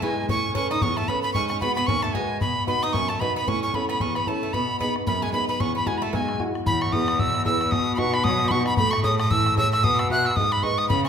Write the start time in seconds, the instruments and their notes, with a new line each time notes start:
0.02 bouzouki G#3, upright piano E4 G#4 B4, tin whistle G#5, bodhran
0.29 upright piano A2, bouzouki C#4, tin whistle C#6, bodhran
0.55 upright piano C#4 A4 B4, bouzouki C#4, tin whistle C#6, bodhran
0.71 bouzouki D#4, tin whistle D#6, bodhran
0.82 upright piano E2, bouzouki C#4, tin whistle C#6, bodhran
0.97 bouzouki A3, tin whistle A5, bodhran
1.08 bouzouki B3, upright piano C#4 A4 B4, tin whistle B5, bodhran
1.16 bodhran
1.22 bouzouki B3, tin whistle B5
1.33 upright piano G#2, bouzouki C#4, tin whistle C#6, bodhran
1.48 bouzouki C#4, tin whistle C#6, bodhran
1.60 bouzouki B3, upright piano F#4 G#4 B4, tin whistle B5, bodhran
1.75 bouzouki B3, tin whistle B5, bodhran
1.87 upright piano D#2, bouzouki C#4, tin whistle C#6, bodhran
2.02 bouzouki A3, tin whistle A5, bodhran
2.13 bouzouki G#3, upright piano F#4 G#4 B4, tin whistle G#5, bodhran
2.23 bodhran
2.41 upright piano B2, bouzouki B3, tin whistle B5, bodhran
2.67 bouzouki B3, upright piano D#4 F#4 B4, tin whistle B5, bodhran
2.83 bouzouki D#4, tin whistle D#6, bodhran
2.93 upright piano F#2, bouzouki C#4, tin whistle C#6, bodhran
3.09 bouzouki A3, tin whistle A5, bodhran
3.20 bouzouki B3, upright piano D#4 F#4 B4, tin whistle B5, bodhran
3.29 bodhran
3.36 bouzouki B3, tin whistle B5
3.48 upright piano A2, bouzouki C#4, tin whistle C#6, bodhran
3.63 bouzouki C#4, tin whistle C#6
3.73 bouzouki B3, upright piano C#4 E4 A4, tin whistle B5, bodhran
3.89 bouzouki B3, tin whistle B5, bodhran
4.00 upright piano E2, bouzouki C#4, tin whistle C#6, bodhran
4.15 bouzouki B3, tin whistle B5, bodhran
4.27 bouzouki A3, upright piano C#4 E4 A4, tin whistle A5, bodhran
4.35 bodhran
4.43 bouzouki A3
4.53 upright piano B2, bouzouki B3, tin whistle B5, bodhran
4.80 upright piano B3 D#4 G#4, bouzouki B3, tin whistle B5, bodhran
4.96 bodhran
5.07 upright piano F#2, bouzouki B3, tin whistle B5, bodhran
5.22 bouzouki G#3, tin whistle G#5, bodhran
5.33 upright piano B3 D#4 G#4, bouzouki B3, tin whistle B5, bodhran
5.41 bodhran
5.49 bouzouki B3, tin whistle B5
5.60 upright piano E2, bouzouki C#4, tin whistle C#6, bodhran
5.75 bouzouki B3, tin whistle B5
5.86 upright piano G#3 E4 F#4, bouzouki G#3, tin whistle G#5, bodhran
5.98 tin whistle B5
6.02 bouzouki A3, tin whistle A5, bodhran
6.13 upright piano B1, bouzouki G#3, tin whistle G#5, bodhran
6.29 bodhran
6.39 upright piano G#3 E4 F#4, bodhran
6.48 bodhran
6.55 bodhran
6.66 cello E2, upright piano E3, tin whistle B5, bodhran
6.81 tin whistle C#6, bodhran
6.87 bodhran
6.92 upright piano B3 E4 G#4, tin whistle D#6, bodhran
7.08 bodhran
7.18 upright piano B2, tin whistle E6, bodhran
7.27 bodhran
7.35 bodhran
7.45 upright piano B3 E4 G#4, tin whistle E6, bodhran
7.61 bodhran
7.71 upright piano B2, cello B2, tin whistle D#6, bodhran
7.93 tin whistle B5, bodhran
7.97 upright piano B3 D#4 F#4, tin whistle C#6, bodhran
8.14 tin whistle B5, bodhran
8.24 upright piano F#3, tin whistle D#6, bodhran
8.32 bodhran
8.40 bodhran
8.48 upright piano B3 D#4 F#4, tin whistle B5 C#6, bodhran
8.66 tin whistle B5, bodhran
8.77 cello A2, upright piano A3, tin whistle B5, bodhran
8.91 tin whistle C#6, bodhran
8.99 bodhran
9.03 upright piano G#4 A4 C#5, tin whistle D#6, bodhran
9.19 tin whistle D#6, bodhran
9.30 upright piano E3, tin whistle E6, bodhran
9.39 bodhran
9.46 bodhran
9.56 upright piano G#4 A4 C#5, tin whistle E6, bodhran
9.73 tin whistle E6, bodhran
9.83 cello B2, upright piano B3, tin whistle D#6, bodhran
9.99 tin whistle E6, bodhran
10.05 bodhran
10.10 upright piano F#4 B4 E5, tin whistle F#6, bodhran
10.25 tin whistle E6, bodhran
10.31 bodhran
10.36 cello G#2, upright piano G#3, tin whistle D#6, bodhran
10.45 bodhran
10.52 tin whistle B5, bodhran
10.63 upright piano G#4 B4 D#5, tin whistle C#6, bodhran
10.78 tin whistle D#6, bodhran
10.89 cello C#3, upright piano C#3, bouzouki B3, tin whistle B5, bodhran
11.05 bouzouki C#4, tin whistle C#6, bodhran